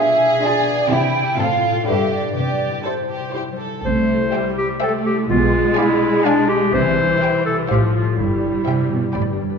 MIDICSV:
0, 0, Header, 1, 9, 480
1, 0, Start_track
1, 0, Key_signature, 0, "major"
1, 0, Tempo, 485044
1, 902, Time_signature, 3, 2, 24, 8
1, 9483, End_track
2, 0, Start_track
2, 0, Title_t, "Violin section"
2, 0, Program_c, 0, 48
2, 0, Note_on_c, 0, 68, 49
2, 305, Note_off_c, 0, 68, 0
2, 423, Note_on_c, 0, 68, 53
2, 778, Note_off_c, 0, 68, 0
2, 893, Note_on_c, 0, 67, 44
2, 1251, Note_off_c, 0, 67, 0
2, 1377, Note_on_c, 0, 69, 47
2, 1733, Note_off_c, 0, 69, 0
2, 1858, Note_on_c, 0, 71, 38
2, 2218, Note_off_c, 0, 71, 0
2, 2827, Note_on_c, 0, 72, 31
2, 3190, Note_off_c, 0, 72, 0
2, 3304, Note_on_c, 0, 72, 33
2, 3671, Note_off_c, 0, 72, 0
2, 4278, Note_on_c, 0, 79, 41
2, 4635, Note_off_c, 0, 79, 0
2, 4761, Note_on_c, 0, 79, 46
2, 5114, Note_off_c, 0, 79, 0
2, 5707, Note_on_c, 0, 80, 50
2, 6062, Note_off_c, 0, 80, 0
2, 6181, Note_on_c, 0, 80, 58
2, 6541, Note_off_c, 0, 80, 0
2, 7147, Note_on_c, 0, 79, 51
2, 7502, Note_off_c, 0, 79, 0
2, 7623, Note_on_c, 0, 77, 42
2, 7981, Note_off_c, 0, 77, 0
2, 8573, Note_on_c, 0, 79, 36
2, 8937, Note_off_c, 0, 79, 0
2, 9068, Note_on_c, 0, 83, 34
2, 9428, Note_off_c, 0, 83, 0
2, 9483, End_track
3, 0, Start_track
3, 0, Title_t, "Flute section"
3, 0, Program_c, 1, 73
3, 0, Note_on_c, 1, 76, 68
3, 421, Note_off_c, 1, 76, 0
3, 432, Note_on_c, 1, 74, 70
3, 904, Note_off_c, 1, 74, 0
3, 914, Note_on_c, 1, 79, 71
3, 1383, Note_off_c, 1, 79, 0
3, 1391, Note_on_c, 1, 77, 59
3, 1854, Note_off_c, 1, 77, 0
3, 1864, Note_on_c, 1, 76, 52
3, 2097, Note_off_c, 1, 76, 0
3, 2110, Note_on_c, 1, 74, 43
3, 2343, Note_off_c, 1, 74, 0
3, 2355, Note_on_c, 1, 74, 49
3, 2826, Note_off_c, 1, 74, 0
3, 2835, Note_on_c, 1, 72, 37
3, 3561, Note_off_c, 1, 72, 0
3, 9483, End_track
4, 0, Start_track
4, 0, Title_t, "Violin section"
4, 0, Program_c, 2, 48
4, 0, Note_on_c, 2, 68, 64
4, 882, Note_off_c, 2, 68, 0
4, 893, Note_on_c, 2, 64, 53
4, 1373, Note_off_c, 2, 64, 0
4, 1377, Note_on_c, 2, 65, 47
4, 1850, Note_on_c, 2, 67, 42
4, 1857, Note_off_c, 2, 65, 0
4, 2329, Note_off_c, 2, 67, 0
4, 2339, Note_on_c, 2, 67, 38
4, 2771, Note_off_c, 2, 67, 0
4, 2815, Note_on_c, 2, 69, 40
4, 2894, Note_off_c, 2, 69, 0
4, 3065, Note_on_c, 2, 67, 32
4, 3295, Note_off_c, 2, 67, 0
4, 3307, Note_on_c, 2, 67, 34
4, 3386, Note_off_c, 2, 67, 0
4, 3556, Note_on_c, 2, 69, 26
4, 3794, Note_off_c, 2, 69, 0
4, 4284, Note_on_c, 2, 76, 42
4, 4286, Note_on_c, 2, 72, 42
4, 4638, Note_off_c, 2, 76, 0
4, 4639, Note_off_c, 2, 72, 0
4, 4770, Note_on_c, 2, 76, 48
4, 4771, Note_on_c, 2, 72, 46
4, 5119, Note_off_c, 2, 76, 0
4, 5120, Note_off_c, 2, 72, 0
4, 5713, Note_on_c, 2, 74, 57
4, 5713, Note_on_c, 2, 77, 55
4, 6066, Note_off_c, 2, 74, 0
4, 6066, Note_off_c, 2, 77, 0
4, 6188, Note_on_c, 2, 74, 56
4, 6188, Note_on_c, 2, 77, 55
4, 6545, Note_off_c, 2, 74, 0
4, 6545, Note_off_c, 2, 77, 0
4, 7146, Note_on_c, 2, 72, 45
4, 7149, Note_on_c, 2, 76, 48
4, 7501, Note_off_c, 2, 72, 0
4, 7503, Note_off_c, 2, 76, 0
4, 7629, Note_on_c, 2, 72, 40
4, 7983, Note_off_c, 2, 72, 0
4, 8586, Note_on_c, 2, 72, 33
4, 8586, Note_on_c, 2, 76, 39
4, 8944, Note_off_c, 2, 76, 0
4, 8945, Note_off_c, 2, 72, 0
4, 9058, Note_on_c, 2, 74, 35
4, 9058, Note_on_c, 2, 79, 33
4, 9422, Note_off_c, 2, 74, 0
4, 9422, Note_off_c, 2, 79, 0
4, 9483, End_track
5, 0, Start_track
5, 0, Title_t, "Clarinet"
5, 0, Program_c, 3, 71
5, 3811, Note_on_c, 3, 72, 65
5, 4485, Note_off_c, 3, 72, 0
5, 4527, Note_on_c, 3, 67, 62
5, 4633, Note_off_c, 3, 67, 0
5, 4776, Note_on_c, 3, 69, 57
5, 4880, Note_off_c, 3, 69, 0
5, 5007, Note_on_c, 3, 67, 62
5, 5112, Note_off_c, 3, 67, 0
5, 5238, Note_on_c, 3, 65, 73
5, 5702, Note_off_c, 3, 65, 0
5, 5715, Note_on_c, 3, 64, 69
5, 6185, Note_on_c, 3, 62, 74
5, 6200, Note_off_c, 3, 64, 0
5, 6421, Note_on_c, 3, 67, 69
5, 6436, Note_off_c, 3, 62, 0
5, 6670, Note_on_c, 3, 72, 84
5, 6684, Note_off_c, 3, 67, 0
5, 7374, Note_off_c, 3, 72, 0
5, 7380, Note_on_c, 3, 69, 58
5, 7489, Note_off_c, 3, 69, 0
5, 7627, Note_on_c, 3, 67, 46
5, 7734, Note_off_c, 3, 67, 0
5, 7854, Note_on_c, 3, 65, 48
5, 8094, Note_off_c, 3, 65, 0
5, 8099, Note_on_c, 3, 64, 47
5, 9046, Note_off_c, 3, 64, 0
5, 9483, End_track
6, 0, Start_track
6, 0, Title_t, "Harp"
6, 0, Program_c, 4, 46
6, 0, Note_on_c, 4, 47, 47
6, 0, Note_on_c, 4, 59, 35
6, 0, Note_on_c, 4, 62, 39
6, 0, Note_on_c, 4, 65, 41
6, 111, Note_on_c, 4, 68, 43
6, 253, Note_off_c, 4, 65, 0
6, 265, Note_on_c, 4, 65, 39
6, 419, Note_off_c, 4, 62, 0
6, 431, Note_on_c, 4, 62, 45
6, 574, Note_off_c, 4, 59, 0
6, 586, Note_on_c, 4, 59, 43
6, 736, Note_off_c, 4, 62, 0
6, 748, Note_on_c, 4, 62, 38
6, 904, Note_on_c, 4, 48, 46
6, 919, Note_off_c, 4, 65, 0
6, 921, Note_off_c, 4, 59, 0
6, 921, Note_off_c, 4, 68, 0
6, 923, Note_off_c, 4, 47, 0
6, 923, Note_off_c, 4, 62, 0
6, 1063, Note_on_c, 4, 60, 39
6, 1219, Note_on_c, 4, 64, 37
6, 1225, Note_on_c, 4, 67, 39
6, 1381, Note_on_c, 4, 45, 41
6, 1397, Note_off_c, 4, 64, 0
6, 1398, Note_off_c, 4, 48, 0
6, 1400, Note_off_c, 4, 67, 0
6, 1531, Note_off_c, 4, 60, 0
6, 1542, Note_on_c, 4, 60, 35
6, 1701, Note_on_c, 4, 65, 32
6, 1705, Note_on_c, 4, 69, 35
6, 1865, Note_on_c, 4, 43, 42
6, 1878, Note_off_c, 4, 45, 0
6, 1878, Note_off_c, 4, 65, 0
6, 1879, Note_off_c, 4, 60, 0
6, 1881, Note_off_c, 4, 69, 0
6, 2021, Note_on_c, 4, 62, 31
6, 2180, Note_on_c, 4, 67, 25
6, 2191, Note_on_c, 4, 71, 26
6, 2341, Note_on_c, 4, 48, 32
6, 2363, Note_off_c, 4, 62, 0
6, 2365, Note_off_c, 4, 43, 0
6, 2365, Note_off_c, 4, 71, 0
6, 2506, Note_on_c, 4, 55, 24
6, 2671, Note_on_c, 4, 64, 24
6, 2826, Note_off_c, 4, 67, 0
6, 2838, Note_on_c, 4, 67, 24
6, 3000, Note_on_c, 4, 72, 28
6, 3153, Note_off_c, 4, 67, 0
6, 3165, Note_on_c, 4, 67, 25
6, 3311, Note_off_c, 4, 64, 0
6, 3323, Note_on_c, 4, 64, 26
6, 3476, Note_off_c, 4, 55, 0
6, 3488, Note_on_c, 4, 55, 26
6, 3637, Note_off_c, 4, 64, 0
6, 3649, Note_on_c, 4, 64, 23
6, 3794, Note_off_c, 4, 48, 0
6, 3806, Note_on_c, 4, 48, 42
6, 3954, Note_off_c, 4, 55, 0
6, 3966, Note_on_c, 4, 55, 30
6, 4111, Note_off_c, 4, 64, 0
6, 4123, Note_on_c, 4, 64, 31
6, 4269, Note_off_c, 4, 67, 0
6, 4281, Note_on_c, 4, 67, 37
6, 4433, Note_off_c, 4, 72, 0
6, 4445, Note_on_c, 4, 72, 35
6, 4594, Note_off_c, 4, 67, 0
6, 4606, Note_on_c, 4, 67, 37
6, 4753, Note_off_c, 4, 72, 0
6, 4765, Note_on_c, 4, 72, 40
6, 4916, Note_off_c, 4, 67, 0
6, 4928, Note_on_c, 4, 67, 42
6, 5070, Note_off_c, 4, 64, 0
6, 5082, Note_on_c, 4, 64, 38
6, 5241, Note_on_c, 4, 47, 49
6, 5256, Note_off_c, 4, 48, 0
6, 5256, Note_off_c, 4, 64, 0
6, 5257, Note_off_c, 4, 55, 0
6, 5257, Note_off_c, 4, 72, 0
6, 5259, Note_off_c, 4, 67, 0
6, 5397, Note_on_c, 4, 59, 40
6, 5558, Note_on_c, 4, 62, 44
6, 5713, Note_on_c, 4, 68, 38
6, 5874, Note_on_c, 4, 74, 44
6, 6020, Note_off_c, 4, 68, 0
6, 6032, Note_on_c, 4, 68, 43
6, 6180, Note_off_c, 4, 74, 0
6, 6191, Note_on_c, 4, 74, 48
6, 6336, Note_off_c, 4, 68, 0
6, 6348, Note_on_c, 4, 68, 47
6, 6499, Note_off_c, 4, 62, 0
6, 6511, Note_on_c, 4, 62, 34
6, 6671, Note_on_c, 4, 48, 47
6, 6687, Note_off_c, 4, 68, 0
6, 6688, Note_off_c, 4, 59, 0
6, 6688, Note_off_c, 4, 62, 0
6, 6689, Note_off_c, 4, 47, 0
6, 6689, Note_off_c, 4, 74, 0
6, 6833, Note_on_c, 4, 55, 38
6, 6986, Note_on_c, 4, 64, 38
6, 7149, Note_on_c, 4, 67, 35
6, 7308, Note_on_c, 4, 72, 37
6, 7454, Note_off_c, 4, 67, 0
6, 7466, Note_on_c, 4, 67, 36
6, 7625, Note_on_c, 4, 45, 46
6, 7642, Note_off_c, 4, 64, 0
6, 7643, Note_off_c, 4, 67, 0
6, 7644, Note_off_c, 4, 48, 0
6, 7645, Note_off_c, 4, 55, 0
6, 7786, Note_on_c, 4, 60, 35
6, 7937, Note_off_c, 4, 72, 0
6, 7942, Note_on_c, 4, 65, 24
6, 7949, Note_on_c, 4, 72, 30
6, 8105, Note_on_c, 4, 43, 36
6, 8122, Note_off_c, 4, 65, 0
6, 8124, Note_off_c, 4, 45, 0
6, 8270, Note_on_c, 4, 55, 25
6, 8420, Note_off_c, 4, 60, 0
6, 8432, Note_on_c, 4, 60, 29
6, 8594, Note_on_c, 4, 67, 25
6, 8739, Note_off_c, 4, 72, 0
6, 8751, Note_on_c, 4, 72, 28
6, 8901, Note_off_c, 4, 67, 0
6, 8913, Note_on_c, 4, 67, 28
6, 9056, Note_off_c, 4, 43, 0
6, 9068, Note_on_c, 4, 43, 38
6, 9090, Note_off_c, 4, 72, 0
6, 9091, Note_off_c, 4, 60, 0
6, 9230, Note_on_c, 4, 62, 31
6, 9384, Note_off_c, 4, 67, 0
6, 9396, Note_on_c, 4, 67, 22
6, 9401, Note_on_c, 4, 71, 26
6, 9483, Note_off_c, 4, 43, 0
6, 9483, Note_off_c, 4, 55, 0
6, 9483, Note_off_c, 4, 62, 0
6, 9483, Note_off_c, 4, 67, 0
6, 9483, Note_off_c, 4, 71, 0
6, 9483, End_track
7, 0, Start_track
7, 0, Title_t, "Viola section"
7, 0, Program_c, 5, 48
7, 0, Note_on_c, 5, 62, 52
7, 0, Note_on_c, 5, 65, 54
7, 304, Note_off_c, 5, 65, 0
7, 305, Note_off_c, 5, 62, 0
7, 429, Note_on_c, 5, 62, 46
7, 429, Note_on_c, 5, 65, 47
7, 781, Note_off_c, 5, 62, 0
7, 781, Note_off_c, 5, 65, 0
7, 898, Note_on_c, 5, 60, 50
7, 899, Note_on_c, 5, 64, 54
7, 1254, Note_off_c, 5, 60, 0
7, 1254, Note_off_c, 5, 64, 0
7, 1379, Note_on_c, 5, 65, 46
7, 1382, Note_on_c, 5, 60, 45
7, 1735, Note_off_c, 5, 65, 0
7, 1736, Note_off_c, 5, 60, 0
7, 1856, Note_on_c, 5, 67, 41
7, 1860, Note_on_c, 5, 62, 39
7, 2217, Note_off_c, 5, 67, 0
7, 2219, Note_off_c, 5, 62, 0
7, 2825, Note_on_c, 5, 67, 33
7, 2826, Note_on_c, 5, 64, 30
7, 3189, Note_off_c, 5, 67, 0
7, 3190, Note_off_c, 5, 64, 0
7, 3313, Note_on_c, 5, 64, 29
7, 3316, Note_on_c, 5, 67, 29
7, 3675, Note_off_c, 5, 64, 0
7, 3677, Note_off_c, 5, 67, 0
7, 3807, Note_on_c, 5, 57, 55
7, 4249, Note_off_c, 5, 57, 0
7, 4277, Note_on_c, 5, 55, 45
7, 4757, Note_off_c, 5, 55, 0
7, 4763, Note_on_c, 5, 57, 55
7, 5228, Note_off_c, 5, 57, 0
7, 5240, Note_on_c, 5, 56, 75
7, 6641, Note_off_c, 5, 56, 0
7, 6672, Note_on_c, 5, 52, 65
7, 7606, Note_off_c, 5, 52, 0
7, 7625, Note_on_c, 5, 53, 47
7, 8095, Note_off_c, 5, 53, 0
7, 8116, Note_on_c, 5, 55, 46
7, 9292, Note_off_c, 5, 55, 0
7, 9483, End_track
8, 0, Start_track
8, 0, Title_t, "Cello section"
8, 0, Program_c, 6, 48
8, 903, Note_on_c, 6, 48, 65
8, 1278, Note_off_c, 6, 48, 0
8, 1378, Note_on_c, 6, 45, 56
8, 1756, Note_off_c, 6, 45, 0
8, 1861, Note_on_c, 6, 43, 44
8, 2242, Note_off_c, 6, 43, 0
8, 2341, Note_on_c, 6, 48, 43
8, 2727, Note_off_c, 6, 48, 0
8, 3804, Note_on_c, 6, 48, 52
8, 4181, Note_off_c, 6, 48, 0
8, 5237, Note_on_c, 6, 47, 68
8, 5611, Note_off_c, 6, 47, 0
8, 6667, Note_on_c, 6, 48, 73
8, 7044, Note_off_c, 6, 48, 0
8, 7623, Note_on_c, 6, 45, 45
8, 8002, Note_off_c, 6, 45, 0
8, 8102, Note_on_c, 6, 43, 48
8, 8483, Note_off_c, 6, 43, 0
8, 8581, Note_on_c, 6, 48, 44
8, 8807, Note_off_c, 6, 48, 0
8, 8821, Note_on_c, 6, 47, 35
8, 8900, Note_off_c, 6, 47, 0
8, 9063, Note_on_c, 6, 45, 40
8, 9142, Note_off_c, 6, 45, 0
8, 9310, Note_on_c, 6, 43, 35
8, 9389, Note_off_c, 6, 43, 0
8, 9483, End_track
9, 0, Start_track
9, 0, Title_t, "Double bass section"
9, 0, Program_c, 7, 48
9, 3805, Note_on_c, 7, 36, 53
9, 4181, Note_off_c, 7, 36, 0
9, 5238, Note_on_c, 7, 35, 58
9, 5612, Note_off_c, 7, 35, 0
9, 6669, Note_on_c, 7, 36, 64
9, 7045, Note_off_c, 7, 36, 0
9, 7627, Note_on_c, 7, 33, 47
9, 8005, Note_off_c, 7, 33, 0
9, 8103, Note_on_c, 7, 31, 47
9, 8484, Note_off_c, 7, 31, 0
9, 9066, Note_on_c, 7, 31, 38
9, 9449, Note_off_c, 7, 31, 0
9, 9483, End_track
0, 0, End_of_file